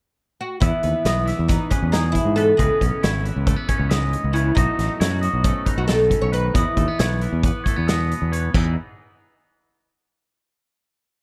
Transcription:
0.41 oud F#4
0.60 fingered electric bass E2, clean electric guitar E2 B3 E5, oud E4, kick, closed hi-hat
0.83 fingered electric bass D#2, clean electric guitar B3, closed hi-hat
1.05 fingered electric bass B1, clean electric guitar B3 D#5, snare, closed hi-hat
1.26 clean electric guitar E3 E5, snare, closed hi-hat
1.39 fingered electric bass E2
1.48 clean electric guitar B3, oud D#4, kick, snare, closed hi-hat
1.71 oud C#4, clean electric guitar G#4 B4, kick, closed hi-hat
1.82 fingered electric bass E2
1.92 clean electric guitar B2 G#4, oud D#4, snare, closed hi-hat
2.12 oud E4, kick, closed hi-hat
2.25 fingered electric bass G#2
2.36 clean electric guitar E2 B3 B4, oud A4, closed hi-hat
2.57 fingered electric bass C#2, clean electric guitar C#3 B3 D#5, oud G#4, kick, closed hi-hat
2.81 fingered electric bass B1, clean electric guitar C#4, kick, closed hi-hat
3.03 fingered electric bass G#1, clean electric guitar E4 C#5, snare, closed hi-hat
3.24 clean electric guitar E3 B4, closed hi-hat
3.36 fingered electric bass C#2
3.47 clean electric guitar A3, kick, closed hi-hat
3.56 clean electric guitar B3
3.69 clean electric guitar C#4 C#5, kick, closed hi-hat
3.79 fingered electric bass C#2
3.89 clean electric guitar G#2 D#5, snare, closed hi-hat
4.13 closed hi-hat
4.24 fingered electric bass C#2
4.33 clean electric guitar C#3 B3 C#5, oud E4, closed hi-hat
4.55 fingered electric bass B1, clean electric guitar B2 F#3 A3 D#4 F#4 D#5, oud D#4, kick, closed hi-hat
4.79 fingered electric bass A1, clean electric guitar D#4, snare, closed hi-hat
5.00 fingered electric bass F#2, clean electric guitar E4 C#5, snare, closed hi-hat
5.11 clean electric guitar F#4
5.21 clean electric guitar F#3 D#5, closed hi-hat
5.33 fingered electric bass B1
5.44 clean electric guitar A3, oud C#4, kick, closed hi-hat
5.66 clean electric guitar D#4 B4, kick, closed hi-hat
5.78 fingered electric bass B1, oud F#4
5.88 clean electric guitar B2 A4, oud A4, snare, closed hi-hat
6.10 clean electric guitar C#3, kick, closed hi-hat
6.22 fingered electric bass B1, oud C#5
6.32 clean electric guitar D#3 B4, oud B4, closed hi-hat
6.54 clean electric guitar E2 B3 D#5, fingered electric bass E2, oud E4, kick, closed hi-hat
6.77 fingered electric bass D#2, clean electric guitar A3, kick, closed hi-hat
6.88 clean electric guitar B3
6.99 fingered electric bass B1, clean electric guitar B3 C#5, snare, closed hi-hat
7.21 clean electric guitar E3 B4, closed hi-hat
7.33 fingered electric bass E2
7.43 clean electric guitar B3, kick, closed hi-hat
7.64 clean electric guitar A3 C#5, kick, closed hi-hat
7.76 fingered electric bass E2, clean electric guitar B3
7.87 clean electric guitar B2 D#5, snare, closed hi-hat
8.12 closed hi-hat
8.22 fingered electric bass E2
8.32 clean electric guitar E2 B3 C#5, closed hi-hat
8.54 clean electric guitar E2 E3 B3 D#4 E4 G#4, fingered electric bass E2, kick, crash

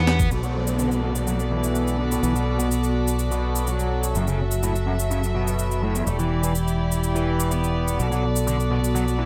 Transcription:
Already playing: fingered electric bass E2, string section E3 B3 D4 G4, distorted electric guitar B3
0.07 snare, closed hi-hat
0.20 kick, shaker
0.31 fingered electric bass B1, distorted electric guitar B2, string section B3 F#4 A4 D5, downlifter, shaker
0.43 distorted electric guitar F#3, shaker
0.67 shaker
0.79 distorted electric guitar D3, shaker
0.92 shaker
1.03 distorted electric guitar B2
1.15 shaker
1.27 distorted electric guitar F#3, shaker
1.40 shaker
1.51 distorted electric guitar E3
1.64 shaker
1.75 shaker
1.88 shaker
1.99 distorted electric guitar D3
2.11 distorted electric guitar A2, shaker
2.23 fingered electric bass B1, distorted electric guitar E3, shaker
2.35 distorted electric guitar B2, shaker
2.59 distorted electric guitar B2, shaker
2.71 shaker
2.84 shaker
3.08 shaker
3.19 shaker
3.31 distorted electric guitar B2, shaker
3.55 shaker
3.67 distorted electric guitar F#3, shaker
3.79 shaker
4.03 shaker
4.15 fingered electric bass F#1, distorted electric guitar F#2, string section F#3 E5, shaker
4.27 distorted electric guitar C#3, shaker
4.51 shaker
4.63 distorted electric guitar A2, shaker
4.76 shaker
4.87 distorted electric guitar F#2
4.99 shaker
5.11 distorted electric guitar C#3, shaker
5.24 shaker
5.35 distorted electric guitar B2
5.47 shaker
5.59 shaker
5.71 shaker
5.83 distorted electric guitar A2
5.95 distorted electric guitar E2, shaker
6.07 fingered electric bass E1, string section E3 E4 G4 D5, distorted electric guitar A3, shaker
6.19 distorted electric guitar E3, shaker
6.43 distorted electric guitar E3, shaker
6.55 shaker
6.68 shaker
6.92 shaker
7.03 shaker
7.16 distorted electric guitar E3, shaker
7.40 shaker
7.51 distorted electric guitar B3, shaker
7.64 shaker
7.88 shaker
7.99 fingered electric bass B1, distorted electric guitar B2, string section B3 F#4 A4, shaker
8.12 distorted electric guitar F#3, shaker
8.36 shaker
8.47 distorted electric guitar D3, shaker
8.60 shaker
8.71 distorted electric guitar B2
8.84 shaker
8.95 distorted electric guitar F#3, shaker
9.08 shaker
9.19 distorted electric guitar E3

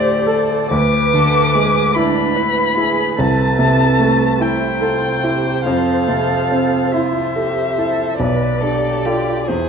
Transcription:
Already playing: grand piano D2 A2 A3 A4 C5, cello G4, violin C5 D5
0.27 grand piano A4, cello A4
0.71 grand piano D2, cello B4, violin B4 D6
1.14 grand piano D3, violin A4
1.55 grand piano G#3, violin G#4
1.95 cello D4, grand piano E4, violin B4 B5
2.36 cello E4, grand piano B4
2.77 grand piano E4, cello G#4
3.19 grand piano C2, cello A4, violin A5
3.59 grand piano C3
3.99 grand piano A3
4.40 cello E4, grand piano E4, violin C5 G5
4.81 cello F4, grand piano A4
5.24 grand piano E4, cello G4
5.65 grand piano F2, cello A4, violin F5
6.08 grand piano C3
6.52 grand piano C4
6.92 grand piano E4, cello F4, violin C5 E5
7.36 cello G4, grand piano A4
7.78 grand piano E4, cello A4
8.19 grand piano B1, violin B4 D5, cello B4
8.61 grand piano D4, cello G4, violin A4
9.05 grand piano F4 A4, cello F4, violin G4
9.47 grand piano E2, cello E4, violin G#4 C5

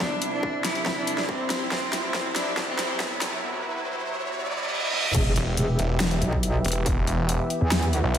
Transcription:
Already playing: supersaw synth C2 C3 E4, riser
0.00 cello D4, kick, snare
0.22 closed hi-hat
0.33 cello D4
0.43 kick
0.64 cello E4, snare, closed hi-hat
0.75 closed hi-hat
0.86 kick, snare
0.97 cello D4
1.07 closed hi-hat
1.18 snare
1.29 cello C4, kick
1.50 snare, closed hi-hat
1.72 supersaw synth F#3, cello C4, kick, snare
1.93 snare, closed hi-hat
2.04 cello C4
2.14 kick, snare
2.36 cello D4, snare, closed hi-hat
2.57 kick, snare
2.68 cello C4
2.79 snare, closed hi-hat
3.00 cello B3, kick, snare
3.22 snare, closed hi-hat
4.29 reverse cymbal
4.93 high tom
5.04 mid tom
5.14 wobble bass E1, supersaw synth E3 B3 G4 E5, kick, closed hi-hat, crash, impact
5.36 detuned saw bass E1, closed hi-hat
5.57 wobble bass E1, closed hi-hat
5.79 detuned saw bass E1, closed hi-hat
6.00 snare, closed hi-hat
6.11 closed hi-hat
6.22 wobble bass B1, closed hi-hat
6.33 kick
6.43 closed hi-hat
6.64 detuned saw bass E1, closed hi-hat
6.68 closed hi-hat
6.72 closed hi-hat
6.86 kick, closed hi-hat
6.97 detuned saw bass E1
7.07 closed hi-hat
7.29 closed hi-hat
7.50 closed hi-hat
7.61 wobble bass E2
7.72 snare, closed hi-hat
7.83 closed hi-hat
7.93 closed hi-hat
8.04 detuned saw bass B1
8.14 closed hi-hat

